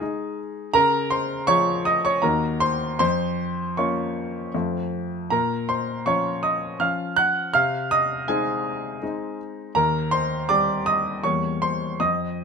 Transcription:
Already playing: G#5
0.01 G#3 D#4 G#4
0.74 C#3 A#4 A#5
1.10 C5 C6
1.47 F3 F4 G#4 C#5 C#6
1.85 D#5 D#6
2.05 C#5 C#6
2.22 D#2 A#3 D#4 F#4 A#4 A#5
2.60 C5 C6
2.99 F2 C5 C6
3.77 A#3 C#4 F4 C#5 C#6
4.55 F2 A3 C4 F4
5.30 A#2 A#4 A#5
5.69 C5 C6
6.06 F3 C#4 F4 C#5 C#6
6.43 D#5 D#6
6.80 F3 C#4 F4 F5 F6
7.16 F#5 F#6
7.54 C3 F5 F6
7.91 D#5 D#6
8.28 G#3 C4 D#4 G#4 G#5
9.02 G#3 C4 D#4
9.75 D#2 A#4 A#5
10.11 C5 C6
10.49 G3 C4 G4 D5 D6
10.86 D#5 D#6
11.24 E2 G3 A#3 A#4 C#5 C#6
11.62 C5 C6
12.00 F2 D#5 D#6

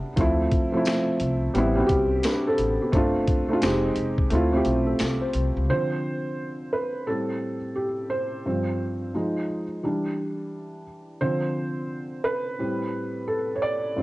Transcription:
Already playing: G3 B3 D4 E4
0.16 D2 F3 A3 C4, kick, closed hi-hat
0.21 E4
0.51 kick, closed hi-hat
0.72 F3 A3 C4
0.77 E4
0.85 finger snap, snare, closed hi-hat, tambourine
1.20 C2, closed hi-hat
1.54 A1 G3 B3 C4, closed hi-hat
1.58 E4
1.75 G3 B3 C4
1.80 F#4
1.87 C2 G4, kick, closed hi-hat
2.23 D4 B4, finger snap, snare, closed hi-hat, tambourine
2.47 C4 A4
2.58 A1, closed hi-hat
2.82 B3 G4
2.92 G1 A3 C4 D4, kick, closed hi-hat
2.96 F4
3.28 kick, closed hi-hat
3.48 A3 C4 D4
3.53 F4
3.61 F1 G#3 C4 D#4, finger snap, snare, closed hi-hat, tambourine
3.66 G4
3.96 F1, closed hi-hat
4.18 kick
4.30 D2 A3 C4 E4, closed hi-hat
4.35 F4
4.52 A3 C4 E4
4.57 G4
4.65 B1 G4, closed hi-hat
4.87 A4
4.99 C2, finger snap, snare, closed hi-hat, tambourine
5.22 C5
5.33 C2, closed hi-hat
5.57 C#2
5.70 D3 F3 C4 C5
6.73 B4
7.07 A2 G3 C4 A4
7.76 G4
8.10 C5
8.46 G2 F3 C4
9.15 F3 G#3 D#4
9.83 E3 G3 D4
11.21 D3 F3 C4 C5
12.24 B4
12.59 A2 G3 C4
13.28 A4
13.56 C#5
13.62 D5
13.96 G2 F3 C4

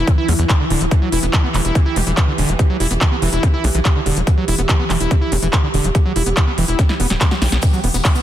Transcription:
Already playing: E3 E4
0.07 B3, kick, closed hi-hat
0.18 E4
0.28 E2 E3, open hi-hat
0.39 E2 E3, closed hi-hat
0.49 F#3, kick, clap, closed hi-hat
0.60 D3
0.70 D1 D3, open hi-hat
0.81 D1 G3, closed hi-hat
0.91 E3 G4, kick, closed hi-hat
1.02 F#3
1.12 E1 E4, open hi-hat
1.23 E1 B3, closed hi-hat
1.33 F#3, kick, clap, closed hi-hat
1.44 B3
1.54 E1 E3, clap, open hi-hat
1.65 E1 E4, closed hi-hat
1.75 B3, kick, closed hi-hat
1.86 E4
1.96 E1 E3, open hi-hat
2.07 E1 E3, closed hi-hat
2.17 F#3, kick, clap, closed hi-hat
2.28 D3
2.38 E1 D3, open hi-hat
2.49 E1 G3, closed hi-hat
2.59 E3, kick, closed hi-hat
2.70 F#3
2.80 E1 E4, open hi-hat
2.91 E1 B3, closed hi-hat
3.01 F#3, kick, clap, closed hi-hat
3.12 B3
3.22 E1 E3, open hi-hat
3.33 E1 E4, closed hi-hat
3.43 B3, kick, closed hi-hat
3.54 E4
3.64 B1 E3, open hi-hat
3.75 B1 E3, closed hi-hat
3.85 F#3, kick, clap, closed hi-hat
3.96 D3
4.06 E1 D3, open hi-hat
4.17 E1 G3, closed hi-hat
4.27 E3, kick, closed hi-hat
4.38 F#3
4.48 E1 E4, open hi-hat
4.58 E1 B3, closed hi-hat
4.69 F#3, kick, clap, closed hi-hat
4.80 B3
4.90 E1 E3, clap, open hi-hat
5.00 E1 E4, closed hi-hat
5.11 B3, kick, closed hi-hat
5.21 E4
5.32 E1 E3, open hi-hat
5.42 E1 E3, closed hi-hat
5.53 F#3, kick, clap, closed hi-hat
5.63 D3
5.74 E1 D3, open hi-hat
5.84 E1 G3, closed hi-hat
5.95 E3, kick, closed hi-hat
6.05 F#3
6.16 E1 E4, open hi-hat
6.26 E1 B3, closed hi-hat
6.37 F#3, kick, clap, closed hi-hat
6.47 B3
6.58 E1 E3, open hi-hat
6.68 E1 E4, closed hi-hat
6.79 B3, kick, snare, closed hi-hat
6.89 E4, snare
7.00 E1 B3, open hi-hat
7.10 D1 F#3, snare, closed hi-hat
7.21 F#3, kick, snare, clap, closed hi-hat
7.31 F#4, snare
7.42 B1 E3, snare, open hi-hat
7.52 B1 B3, snare, closed hi-hat
7.62 E3 E4, kick, closed hi-hat, shaker
7.73 F#3, shaker
7.84 E1 B3, open hi-hat
7.94 E1 B3, closed hi-hat, shaker
8.05 F#3, kick, clap, closed hi-hat, shaker
8.15 B3, shaker

